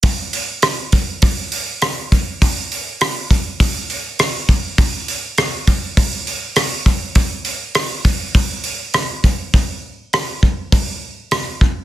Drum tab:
HH |oooooooo|oooooooo|oooooooo|oooooooo|
SD |--r---r-|--r---r-|--r---r-|--r---r-|
BD |o--oo--o|o--oo--o|o--oo--o|o--oo--o|

HH |o-o-o-o-|
SD |--r---r-|
BD |o--oo--o|